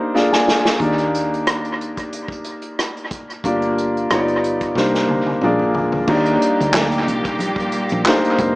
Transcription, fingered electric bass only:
0.81 D#2
3.45 G1
4.11 G1
4.76 C2
5.44 A#1
6.09 D#2
6.60 D2
7.09 C2
7.41 A#1
7.92 A#1
8.39 F1

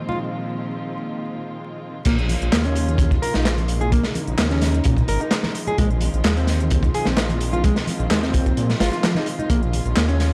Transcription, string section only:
Already playing: A#2 D#3 F3 G#3 C4 F4
2.07 C#3 F3 G#3 A#3 F4
3.93 D#4
5.78 D#3 C4 F4
9.50 C#3 A#3

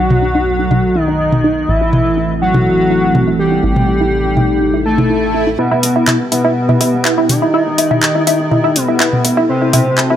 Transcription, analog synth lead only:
Already playing: F#4
0.95 D#4
1.68 E4
2.42 F#4
3.39 G4
4.85 A4
5.59 B3
6.32 B3
7.29 D#4
8.76 B3
9.49 C4

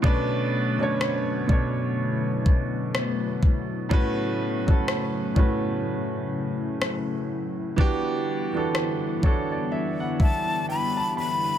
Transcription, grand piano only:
0.02 B2 A3 C#4 D4
0.06 B4
0.78 B2 A3 C#4 D4
0.83 C#5
1.47 B2 A3 C#4 D4
1.52 C#5
3.89 A2 A3 C#4 F#4
3.93 B4
4.66 A2 A3 C#4 F#4
4.70 A4
5.34 A2 A3 C#4 F#4
5.39 B4
7.76 E3 B3 D4 F#4
7.81 G4
8.53 E3 B3 D4 F#4
8.57 A4
9.21 E3 B3 D4 F#4 C#5
9.26 A4
9.51 D5
9.72 E5
10.00 F#5
10.20 E5
10.69 G5
10.97 A5
11.17 B5

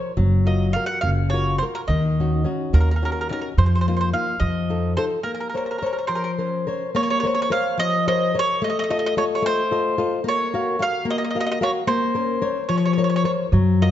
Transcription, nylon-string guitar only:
Already playing: A#4 C5 C#5
0.17 F#3
0.46 F4 F#4 A#4
0.75 F4 F#4 A#4
1.04 C#3
1.33 F4 F#4 A#4
1.62 F4 F#4 A#4
1.90 D#3
2.20 C#4 D#4 F#4
2.44 C#4 D#4 F#4
2.73 A#3
3.02 C#4 D#4 F#4
3.30 C#4 D#4 F#4
3.59 F3
3.88 A#3 D#4 F4
4.13 A#3 D#4 F4
4.41 F3
4.70 D#4 F4 A4
4.97 D#4 F4 A4
5.24 A#3
5.54 A#4 C5 C#5
5.82 A#4 C5 C#5
6.09 F3
6.38 C#4 A#4 C5
6.67 A#4 C5 C#5
6.95 A#3
7.23 A#4 C5 C#5
7.50 A#4 C5 C#5
7.78 F3
8.08 A#4 C5 C#5
8.34 A#4 C5 C#5
8.62 A3
8.90 F4 A4 D#5
9.17 F4 A4 D#5
9.42 A3
9.71 F4 A4 D#5
9.98 F4 A4 D#5
10.24 A#3
10.54 F#4 A#4 F5
10.79 F#4 A#4 F5
11.05 A#3
11.35 F#4 A#4 F5
11.61 F#4 A#4 F5
11.87 A#3
12.15 C#4 A#4 C5
12.42 A#4 C5 C#5
12.69 F3
12.98 A#4 C5 C#5
13.24 A#4 C5 C#5
13.53 F#3
13.82 F4 F#4 A#4

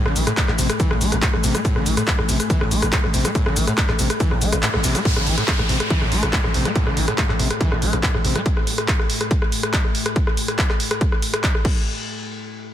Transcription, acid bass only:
0.06 D3
0.16 E3
0.27 A2
0.37 A2
0.48 A2
0.58 C3
0.80 E3
0.91 A2
1.01 A3
1.12 A2
1.22 A2
1.33 A2
1.44 C3
1.54 A3
1.65 A2
1.76 D3
1.86 E3
1.97 A2
2.07 A2
2.18 A2
2.29 C3
2.50 E3
2.61 A2
2.71 A3
2.82 A2
2.93 A2
3.04 A2
3.14 C3
3.25 A3
3.35 A2
3.46 D3
3.57 E3
3.67 A2
3.78 A2
3.89 A2
3.99 C3
4.20 E3
4.31 A2
4.41 A3
4.53 A2
4.63 A2
4.74 A2
4.84 C3
4.95 A3
5.05 A2
5.16 D3
5.27 E3
5.38 A2
5.48 A2
5.59 A2
5.69 C3
5.90 E3
6.01 A2
6.12 A3
6.23 A2
6.33 A2
6.44 A2
6.54 C3
6.65 A3
6.76 A2
6.87 D3
6.97 E3
7.08 A2
7.18 A2
7.29 A2
7.39 C3
7.61 E3
7.72 A2
7.82 A3
7.93 A2
8.03 A2
8.14 A2
8.25 C3
8.36 A3

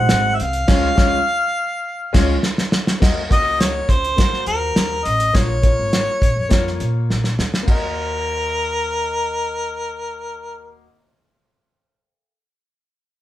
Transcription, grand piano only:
Already playing: G#3 D#4 F#4 C5
0.68 G#3 C#4 F4 C#5
0.95 G#3 C#4 F4 C#5
2.13 G#3 C#4 F4
2.21 C#5
3.00 A#3 F#4 D#5
3.29 A#3 F#4 D#5
4.16 A#3 F#4 A#4
4.25 C5
5.33 A#3 F4 C#5
5.62 A#3 F4 C#5
6.49 A#3 F4 C#5
7.63 A#3 F#4
7.70 D#5

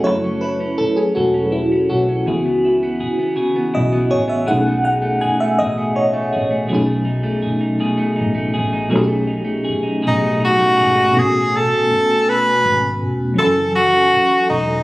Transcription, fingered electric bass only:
0.06 F#1
0.81 muted fingered electric bass stroke
1.17 E1
1.91 B1
2.28 C#2
3.03 muted fingered electric bass stroke
3.76 B1
4.13 A1
4.50 B1
5.25 muted fingered electric bass stroke
5.61 A1
6.36 A1
6.73 B1
7.47 muted fingered electric bass stroke
8.21 A1
8.58 A1
8.95 B1
9.69 muted fingered electric bass stroke
10.07 A1
10.80 G#1
11.17 A1
11.91 muted fingered electric bass stroke
12.65 G#1
13.02 E1
13.39 F#1
14.13 muted fingered electric bass stroke
14.50 E1

